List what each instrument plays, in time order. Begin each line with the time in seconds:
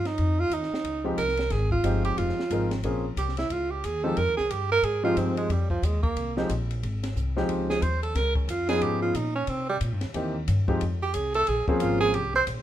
Already playing: upright bass G2
0.05 tenor saxophone D#4, snare, ride
0.18 upright bass F2, ride
0.40 tenor saxophone F4
0.50 upright bass D#2, tenor saxophone D#4, hi-hat pedal, ride
0.63 snare
0.72 muted upright bass stroke, snare
0.84 upright bass C#2, ride
1.04 grand piano F3 G#3 C4 D#4 G4
1.18 upright bass C2, tenor saxophone A#4, hi-hat pedal, ride
1.29 snare
1.37 snare, ride
1.50 upright bass G#1, tenor saxophone G#4, snare, ride
1.71 tenor saxophone F4, kick
1.83 upright bass G1, grand piano F3 G#3 C4 D#4 G4, hi-hat pedal, ride
2.05 tenor saxophone G4, ride
2.17 upright bass F1, tenor saxophone F4, ride
2.29 snare
2.38 muted upright bass stroke, snare
2.50 upright bass G#1, grand piano F3 G#3 C4 D#4 A#4, hi-hat pedal, ride
2.71 snare, ride
2.83 upright bass A#1, grand piano F3 A#3 C4 C#4 G#4, ride
3.16 upright bass C2, tenor saxophone G4, hi-hat pedal, ride
3.29 snare
3.37 tenor saxophone E4, snare, ride
3.50 upright bass C#2, tenor saxophone F4, ride
3.71 tenor saxophone G4
3.84 upright bass D#2, tenor saxophone G#4, hi-hat pedal, ride
4.04 grand piano F3 G#3 C4 D#4 G4, tenor saxophone A4
4.17 upright bass F2, tenor saxophone A#4, ride
4.28 upright bass D#2
4.37 upright bass C2, tenor saxophone G#4, snare
4.49 upright bass G2, tenor saxophone G4, hi-hat pedal, ride
4.71 tenor saxophone A#4
4.83 upright bass G#2, tenor saxophone G#4, ride
5.03 grand piano F3 G#3 C4 D#4 G4, tenor saxophone F4
5.17 upright bass G2, tenor saxophone C4, hi-hat pedal, ride
5.37 tenor saxophone G#3, ride
5.49 upright bass F2, tenor saxophone G3, ride
5.70 tenor saxophone F3, kick
5.82 upright bass D#2, tenor saxophone G#3, hi-hat pedal, ride
6.03 tenor saxophone A#3, kick
6.16 upright bass C2, ride
6.37 grand piano F3 G#3 C4 D#4 G4, snare
6.49 upright bass A#1, hi-hat pedal, ride
6.71 ride
6.83 upright bass G#1, ride
7.03 snare, ride
7.16 upright bass C2, hi-hat pedal
7.36 grand piano F3 G#3 C4 D#4 G4, snare
7.49 upright bass C#2, ride
7.70 tenor saxophone G#4, snare
7.82 upright bass D#2, tenor saxophone C5, hi-hat pedal, ride
8.03 tenor saxophone A4, ride
8.15 upright bass C#2, tenor saxophone A#4, snare, ride
8.35 tenor saxophone C#4, kick
8.48 upright bass F2, tenor saxophone F4, hi-hat pedal, ride
8.69 grand piano F3 B3 C#4 D#4 G#4, tenor saxophone G#4, snare, ride
8.81 upright bass G#2, tenor saxophone G4, ride
9.02 tenor saxophone F4
9.15 upright bass A#2, tenor saxophone D#4, hi-hat pedal, ride
9.35 tenor saxophone C#4
9.47 upright bass C3, tenor saxophone C4, ride
9.69 tenor saxophone G3
9.81 upright bass A#2, hi-hat pedal, ride
9.93 upright bass G2
10.01 upright bass E2, snare, ride
10.14 upright bass D#2, grand piano E3 A#3 C4 D#4 G4, ride
10.48 upright bass G2, hi-hat pedal, ride
10.68 grand piano F3 G#3 C4 D#4 G4, kick
10.81 upright bass F2, ride
11.02 tenor saxophone G4
11.14 upright bass C2, tenor saxophone G#4, hi-hat pedal, ride
11.34 tenor saxophone A4, ride
11.47 upright bass A#1, tenor saxophone G#4, ride
11.68 grand piano F3 A#3 C4 C#4 G#4, tenor saxophone C4, muted upright bass stroke, kick
11.80 upright bass G#1, tenor saxophone F4, hi-hat pedal, ride
12.00 tenor saxophone G#4
12.14 upright bass C2, tenor saxophone G4, ride
12.34 tenor saxophone C5, snare
12.47 upright bass A#1, hi-hat pedal, ride
12.58 upright bass G1